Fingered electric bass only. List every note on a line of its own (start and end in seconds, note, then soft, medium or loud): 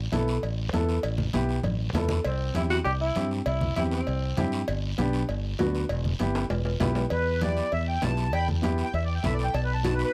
0.13 0.37 B1 medium
0.43 0.67 A1 medium
0.73 0.98 E2 medium
1.04 1.28 A1 loud
1.35 1.59 B1 medium
1.65 1.89 A1 loud
1.94 2.19 E2 loud
2.25 2.50 C2 loud
2.55 2.80 E2 medium
2.85 3.10 C2 loud
3.16 3.41 G2 loud
3.46 3.71 C2 loud
3.77 4.02 E2 medium
4.08 4.32 C2 loud
4.38 4.62 G2 loud
4.69 4.93 G1 loud
4.98 5.23 B1 medium
5.29 5.53 G1 loud
5.59 5.84 D2 medium
5.90 6.14 E1 loud
6.20 6.45 G1 medium
6.50 6.75 E1 loud
6.81 7.05 B1 loud
7.11 7.60 E2 loud
7.73 7.97 E2 medium
8.03 8.34 B1 medium
8.34 8.82 E2 loud
8.94 9.18 E2 loud
9.24 9.48 B1 loud
9.54 10.03 B1 loud